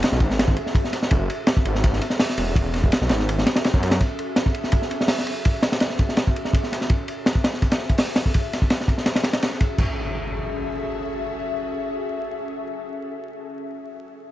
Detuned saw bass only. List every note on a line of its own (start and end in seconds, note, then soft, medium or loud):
0.12 0.22 B1 loud
0.21 0.55 G#1 medium
1.11 1.28 F#1 loud
1.65 2.00 G#1 medium
2.38 2.91 E1 medium
3.01 3.11 B1 loud
3.10 3.45 G#1 medium
3.74 3.99 F#2 medium